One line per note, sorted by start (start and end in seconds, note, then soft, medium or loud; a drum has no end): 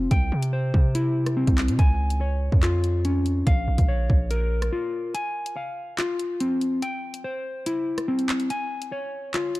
0.00 0.11 C4 medium
0.00 0.11 F4 loud
0.00 0.11 F5 loud
0.00 0.11 G#5 loud
0.11 0.31 C2 loud
0.11 1.79 G5 loud
0.11 kick loud
0.11 closed hi-hat medium
0.32 0.72 C3 loud
0.42 closed hi-hat medium
0.53 1.79 C5 medium
0.74 1.44 C3 loud
0.74 kick loud
0.95 1.79 E4 loud
0.95 closed hi-hat medium
1.26 cross-stick medium
1.26 closed hi-hat medium
1.37 1.79 C4 medium
1.47 1.70 C2 loud
1.47 kick loud
1.47 closed hi-hat medium
1.58 clap loud
1.58 closed hi-hat medium
1.68 1.78 C3 loud
1.68 closed hi-hat medium
1.79 2.49 C#2 loud
1.79 3.46 G#5 loud
1.79 kick loud
1.79 closed hi-hat medium
2.10 closed hi-hat medium
2.21 3.47 C#5 medium
2.52 3.43 F2 loud
2.52 kick medium
2.63 3.47 F4 loud
2.63 clap loud
2.63 closed hi-hat medium
2.84 closed hi-hat medium
3.05 3.47 C#4 medium
3.05 closed hi-hat medium
3.26 closed hi-hat medium
3.47 3.67 A#1 loud
3.47 5.14 F5 loud
3.47 kick loud
3.47 closed hi-hat medium
3.68 3.78 A#1 loud
3.78 4.08 A#1 loud
3.78 kick medium
3.78 closed hi-hat medium
3.88 5.14 C#5 medium
4.10 4.70 A#1 loud
4.10 kick loud
4.31 5.15 A#4 medium
4.31 closed hi-hat medium
4.62 cross-stick medium
4.62 closed hi-hat medium
4.72 5.14 F4 medium
5.15 6.82 G#5 loud
5.15 closed hi-hat medium
5.46 closed hi-hat medium
5.56 6.82 F5 medium
5.98 6.82 F4 loud
5.98 clap loud
5.98 closed hi-hat medium
6.19 closed hi-hat medium
6.40 6.82 C4 medium
6.40 closed hi-hat medium
6.61 closed hi-hat medium
6.82 8.50 G5 loud
6.82 closed hi-hat medium
7.14 closed hi-hat medium
7.24 8.50 C5 medium
7.66 8.50 E4 loud
7.66 closed hi-hat medium
7.98 cross-stick medium
7.98 closed hi-hat medium
8.08 8.50 C4 medium
8.19 closed hi-hat medium
8.29 clap loud
8.29 closed hi-hat medium
8.40 closed hi-hat medium
8.50 9.60 G#5 loud
8.50 closed hi-hat medium
8.82 closed hi-hat medium
8.92 9.60 C#5 medium
9.34 9.60 F4 loud
9.34 clap loud
9.34 closed hi-hat medium
9.55 closed hi-hat medium